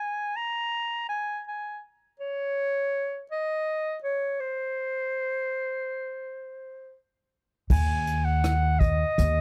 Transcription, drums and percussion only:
7.70 kick medium
7.70 crash medium
8.07 closed hi-hat soft
8.44 cross-stick medium
8.44 closed hi-hat medium
8.81 kick medium
8.81 closed hi-hat soft
9.18 closed hi-hat medium

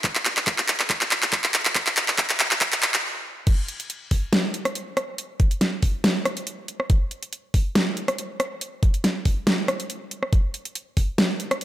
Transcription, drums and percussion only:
0.04 kick loud
0.04 clap medium
0.04 closed hi-hat medium
0.15 clap medium
0.25 clap medium
0.25 closed hi-hat medium
0.37 clap medium
0.37 closed hi-hat medium
0.47 kick loud
0.47 clap medium
0.47 closed hi-hat medium
0.58 clap medium
0.68 clap loud
0.68 closed hi-hat medium
0.80 clap medium
0.90 kick loud
0.90 clap loud
0.90 closed hi-hat medium
1.01 clap medium
1.11 clap loud
1.11 closed hi-hat medium
1.22 clap medium
1.22 closed hi-hat medium
1.33 kick loud
1.33 clap loud
1.33 closed hi-hat medium
1.44 clap medium
1.54 clap loud
1.54 closed hi-hat medium
1.65 clap medium
1.75 kick loud
1.75 clap loud
1.75 closed hi-hat medium
1.87 clap medium
1.97 clap loud
1.97 closed hi-hat medium
2.08 clap medium
2.08 closed hi-hat medium
2.18 kick loud
2.18 clap loud
2.18 closed hi-hat medium
2.30 clap loud
2.40 clap loud
2.40 closed hi-hat medium
2.51 clap medium
2.61 kick loud
2.61 clap loud
2.61 closed hi-hat medium
2.72 clap loud
2.83 clap loud
2.83 closed hi-hat medium
2.94 clap medium
2.94 closed hi-hat medium
3.47 kick loud
3.47 closed hi-hat medium
3.47 crash loud
3.68 closed hi-hat medium
3.80 closed hi-hat medium
3.90 closed hi-hat medium
4.11 kick medium
4.11 open hi-hat loud
4.33 snare loud
4.33 closed hi-hat medium
4.54 closed hi-hat medium
4.65 cross-stick medium
4.65 closed hi-hat medium
4.75 closed hi-hat medium
4.97 cross-stick medium
4.97 closed hi-hat medium
5.18 closed hi-hat medium
5.40 kick loud
5.40 closed hi-hat medium
5.51 closed hi-hat medium
5.61 snare medium
5.61 closed hi-hat medium
5.82 kick medium
5.82 open hi-hat medium
6.04 snare loud
6.04 closed hi-hat medium
6.25 cross-stick medium
6.25 closed hi-hat medium
6.37 closed hi-hat medium
6.47 closed hi-hat medium
6.68 closed hi-hat medium
6.80 cross-stick medium
6.90 kick loud
6.90 closed hi-hat medium
7.11 closed hi-hat medium
7.23 closed hi-hat medium
7.33 closed hi-hat medium
7.54 kick medium
7.54 open hi-hat medium
7.75 snare loud
7.75 closed hi-hat medium
7.97 closed hi-hat medium
8.08 cross-stick medium
8.08 closed hi-hat medium
8.18 closed hi-hat medium
8.40 cross-stick medium
8.40 closed hi-hat medium
8.61 closed hi-hat medium
8.83 kick loud
8.83 closed hi-hat medium
8.94 closed hi-hat medium
9.04 snare medium
9.04 closed hi-hat medium
9.25 kick medium
9.25 open hi-hat medium
9.47 snare loud
9.47 closed hi-hat medium
9.68 cross-stick medium
9.68 closed hi-hat medium
9.80 closed hi-hat medium
9.90 closed hi-hat medium
10.11 closed hi-hat medium
10.23 cross-stick medium
10.33 kick loud
10.33 closed hi-hat medium
10.54 closed hi-hat medium
10.65 closed hi-hat medium
10.75 closed hi-hat medium
10.97 kick medium
10.97 open hi-hat loud
11.18 snare loud
11.18 closed hi-hat medium
11.40 closed hi-hat medium
11.51 cross-stick medium
11.51 closed hi-hat medium
11.61 closed hi-hat medium

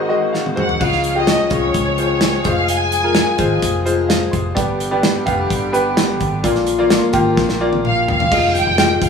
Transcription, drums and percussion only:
0.34 snare soft
0.46 high tom medium
0.57 mid tom medium
0.69 floor tom medium
0.81 kick loud
0.81 crash medium
0.92 snare soft
1.04 closed hi-hat medium
1.27 snare loud
1.27 closed hi-hat medium
1.50 kick medium
1.50 closed hi-hat medium
1.74 kick medium
1.74 closed hi-hat medium
1.98 closed hi-hat medium
2.21 snare loud
2.21 closed hi-hat medium
2.44 kick medium
2.44 closed hi-hat medium
2.68 closed hi-hat medium
2.92 closed hi-hat medium
3.15 snare loud
3.15 closed hi-hat medium
3.38 kick medium
3.38 closed hi-hat medium
3.62 kick medium
3.62 closed hi-hat medium
3.86 closed hi-hat medium
4.10 snare loud
4.10 closed hi-hat medium
4.33 kick medium
4.33 closed hi-hat medium
4.57 kick loud
4.57 closed hi-hat medium
4.80 closed hi-hat medium
5.03 snare loud
5.03 closed hi-hat medium
5.27 kick medium
5.27 closed hi-hat medium
5.50 kick medium
5.50 closed hi-hat medium
5.74 closed hi-hat medium
5.97 snare loud
5.97 closed hi-hat medium
6.20 kick medium
6.20 closed hi-hat medium
6.44 kick loud
6.44 closed hi-hat medium
6.55 snare soft
6.66 closed hi-hat medium
6.90 snare loud
6.90 closed hi-hat medium
7.13 kick medium
7.13 closed hi-hat medium
7.37 kick medium
7.37 snare medium
7.49 snare soft
7.73 high tom medium
7.85 mid tom medium
8.08 floor tom medium
8.20 floor tom medium
8.32 kick loud
8.32 crash medium
8.55 hi-hat pedal medium
8.55 open hi-hat medium
8.78 snare loud
8.78 hi-hat pedal medium
8.78 open hi-hat medium
9.02 kick medium
9.02 hi-hat pedal medium
9.02 open hi-hat medium

